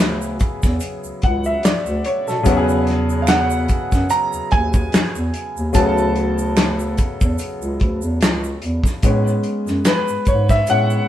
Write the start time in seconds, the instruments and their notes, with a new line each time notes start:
Already playing: bass clarinet D2, upright piano C#3 F#3 B3 E4 G#4, grand piano E5
0.00 clap
0.22 shaker
0.40 bass clarinet E2, kick, closed hi-hat, shaker
0.63 bass clarinet E2, kick, snare, shaker
0.80 closed hi-hat, shaker
1.04 bass clarinet C#2, shaker
1.22 bass clarinet C#2, upright piano F#5, kick, closed hi-hat
1.44 upright piano E5, shaker
1.63 bass clarinet D2, upright piano D5, finger snap, snare, clap, closed hi-hat, shaker
1.86 bass clarinet D2, shaker
2.04 upright piano C#5, closed hi-hat
2.28 bass clarinet B2, upright piano A4, snare, shaker
2.43 bass clarinet E2, upright piano C#3 F#3 B3, kick, closed hi-hat, shaker
2.48 upright piano E4 F#4
2.57 upright piano G#4
2.69 shaker
2.87 snare, closed hi-hat
3.09 shaker
3.22 grand piano F5
3.27 grand piano F#5, finger snap, snare, clap, closed hi-hat, shaker
3.50 shaker
3.68 bass clarinet F#2, kick, closed hi-hat, shaker
3.92 bass clarinet F#2, kick, snare, shaker
4.10 grand piano A#5, closed hi-hat, shaker
4.33 bass clarinet D#2, shaker
4.51 bass clarinet D#2, grand piano G#5, kick, closed hi-hat
4.73 kick, shaker
4.92 bass clarinet E2, finger snap, snare, clap, closed hi-hat, shaker
5.15 bass clarinet E2, shaker
5.34 closed hi-hat
5.57 bass clarinet D#2, shaker
5.73 bass clarinet D2, upright piano C#3 F#3 B3, grand piano A5, kick, closed hi-hat, shaker
5.78 upright piano E4 G#4
5.86 upright piano A4
5.98 shaker
6.16 closed hi-hat
6.38 shaker
6.57 finger snap, snare, clap, closed hi-hat, shaker
6.79 shaker
6.97 bass clarinet E2, kick, closed hi-hat, shaker
7.21 bass clarinet E2, kick, shaker
7.38 closed hi-hat, shaker
7.62 bass clarinet C#2, shaker
7.80 bass clarinet D2, kick, closed hi-hat
8.02 bass clarinet E2, shaker
8.21 bass clarinet C#2, finger snap, snare, clap, closed hi-hat, shaker
8.44 shaker
8.62 bass clarinet E2, closed hi-hat
8.84 kick, snare, shaker
9.02 bass clarinet A2, upright piano G#3 B3 C#4, kick, closed hi-hat, shaker
9.27 shaker
9.43 closed hi-hat
9.67 bass clarinet F#2, snare, shaker
9.85 upright piano B4, finger snap, snare, clap, closed hi-hat, shaker
10.08 bass clarinet G#2, shaker
10.25 bass clarinet G#2, upright piano C#5, kick, closed hi-hat, shaker
10.49 upright piano E5, kick, snare, shaker
10.67 bass clarinet A2, upright piano G#3 B3 C#4 F#5, closed hi-hat, shaker
10.90 shaker